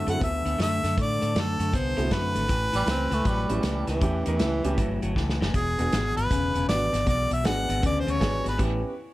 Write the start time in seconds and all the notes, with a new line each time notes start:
0.07 F#2 D3 A3 C4 E4 F#4 F#5, closed hi-hat
0.20 D2 D3 B3 E5, kick, closed hi-hat
0.45 D2 D3 B3, closed hi-hat
0.58 F#2 D3 A3 E5, snare, closed hi-hat
0.83 F#2 D3 A3, snare, closed hi-hat
0.97 A2 D3 A3, kick, closed hi-hat
1.02 D5
1.21 A2 D3 A3, closed hi-hat
1.35 F#2 D3 A3, snare, closed hi-hat
1.40 A4
1.59 F#2 D3 A3, closed hi-hat
1.73 C2 D3 B3 C5, kick, closed hi-hat
1.97 C2 D3 A3 B3 C4 E4 F#4, closed hi-hat
2.11 F#2 D3 A3 B4, kick, snare, closed hi-hat
2.35 G#1 D3 A3, closed hi-hat
2.48 A1 A2 E3, kick, closed hi-hat
2.72 A1 A2 E3 G3, closed hi-hat
2.86 C#2 A2 E3, snare, closed hi-hat
2.91 C4
3.11 C#2 A2 E3 A3, closed hi-hat
3.24 A1 A2 F#3 G3, kick, closed hi-hat
3.49 A1 A2 F#3 B3 C#4 E4 G4, closed hi-hat
3.63 C#2 A2 E3, snare, closed hi-hat
3.87 C#2 A2 E3, snare, closed hi-hat
4.01 E2 A2 E3 B3 C#4 E4 G4, kick, closed hi-hat
4.26 E2 A2 E3, closed hi-hat
4.39 C#2 A2 E3, snare, closed hi-hat
4.64 C#2 A2 E3 B3 C#4 E4 G4, closed hi-hat
4.78 G1 A2 F#3, kick, closed hi-hat
5.02 G1 A2 F#3, closed hi-hat
5.16 C#2 A2 E3, kick, snare
5.30 snare
5.41 F#1 A2 E3, snare
5.54 E1 E2 B2 G#4, kick, closed hi-hat
5.78 E1 E2 B2 B3 D4 F#4 G#4, closed hi-hat
5.92 G#1 E2 B2, snare, closed hi-hat
6.16 G#1 E2 B2 B4, closed hi-hat
6.30 E1 E2 C#3, kick, closed hi-hat
6.54 E1 E2 C#3, closed hi-hat
6.68 G#1 E2 B2 B3 D4 F#4 B4 D5, snare, closed hi-hat
6.92 G#1 E2 B2, snare, closed hi-hat
7.06 B1 E2 B2 D5, kick, closed hi-hat
7.31 B1 E2 B2 E5, closed hi-hat
7.44 G#1 E2 B2 B3 D4 F#4 G#4 F#5, snare, closed hi-hat
7.69 G#1 E2 B2, closed hi-hat
7.82 D2 E2 C#3, kick, closed hi-hat
7.86 D5
8.00 C5
8.07 D2 E2 C#3, closed hi-hat
8.11 C#5
8.20 G#1 E2 B2 B3 D4 F#4 G#4, kick, snare, closed hi-hat
8.44 G#1 E2 B2, snare, closed hi-hat
8.49 B4
8.58 A1 A2 E3 B3 C#4 E4 G4, kick, closed hi-hat, crash